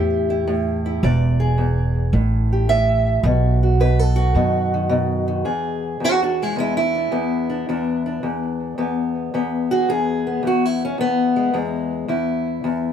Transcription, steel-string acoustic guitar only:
0.00 0.46 A2 medium
0.00 0.29 E4 soft
0.00 1.02 G4 medium
0.30 0.85 E4 soft
0.48 1.03 A2 medium
0.86 1.01 E4 soft
1.04 1.57 E2 medium
1.04 2.12 D5 medium
1.40 2.11 G#4 medium
1.58 2.13 E2 medium
2.13 2.69 A2 medium
2.53 3.23 G4 soft
2.69 3.25 A2 medium
2.69 3.25 E5 loud
3.25 3.79 B2 medium
3.25 3.62 F#4 soft
3.63 4.15 F#4 soft
3.80 4.34 B2 medium
3.80 3.99 B4 medium
3.99 5.29 A4 medium
4.16 5.46 F#4 medium
4.36 4.88 B2 medium
4.36 4.73 D#3 soft
4.74 4.90 D#3 soft
4.89 5.44 B2 medium
4.89 5.26 D#3 soft
5.28 5.44 D#3 soft
5.45 6.00 E2 medium
5.45 6.43 G#4 soft
6.00 6.56 E2 medium
6.04 6.09 D4 medium
6.04 6.22 F#4 medium
6.23 6.34 D4 medium
6.23 6.41 F#4 medium
6.42 6.57 G#3 medium
6.42 6.59 E4 medium
6.56 7.11 E2 medium
6.56 6.76 G#3 medium
6.56 6.76 E4 medium
6.77 8.42 E4 medium
6.95 7.49 D4 soft
7.12 7.68 E2 medium
7.12 8.78 B3 soft
7.50 7.69 D4 medium
7.69 8.23 E2 medium
7.69 8.06 D4 medium
8.06 9.71 D4 soft
8.23 8.77 E2 medium
8.78 9.33 E2 medium
8.78 9.34 B3 soft
9.34 9.88 E2 medium
9.34 10.27 B3 medium
9.71 9.89 F#4 medium
9.71 9.89 G#4 medium
9.89 10.42 E2 medium
9.89 10.44 G#4 medium
10.27 10.84 B3 soft
10.43 10.98 E2 medium
10.47 10.65 F#4 medium
10.65 10.82 E4 medium
10.85 11.00 C#4 medium
10.98 11.52 E2 medium
10.98 11.55 B3 loud
11.36 11.53 G#3 soft
11.54 12.07 E2 medium
11.54 12.07 G#3 medium
12.08 12.63 E2 medium
12.08 12.93 E4 medium
12.64 12.93 E2 medium

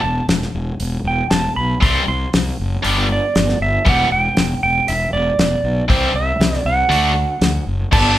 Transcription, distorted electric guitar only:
1.81 2.02 C3 medium
1.81 2.02 E3 medium
1.81 2.02 G3 medium
1.81 2.02 C4 medium
1.81 2.03 G4 medium
2.83 3.04 G2 loud
2.83 3.04 D3 medium
2.83 3.04 G3 loud
2.83 3.04 B3 loud
2.83 3.05 D4 loud
2.83 3.05 G4 loud
3.85 4.06 E2 medium
3.85 4.06 B2 medium
3.85 4.06 E3 medium
3.85 4.06 G3 loud
3.85 4.07 B3 medium
3.85 4.07 G4 medium
5.88 6.09 C3 medium
5.88 6.10 E3 medium
5.88 6.10 G3 medium
5.88 6.10 C4 loud
5.88 6.10 G4 medium
6.89 7.11 D3 loud
6.89 7.11 A3 medium
6.89 7.11 D4 loud
6.89 7.11 F#4 loud
7.91 8.17 G2 medium
7.91 8.16 D3 loud
7.91 8.17 G3 loud
7.91 8.18 B3 loud
7.91 8.18 D4 loud
7.91 8.18 G4 loud

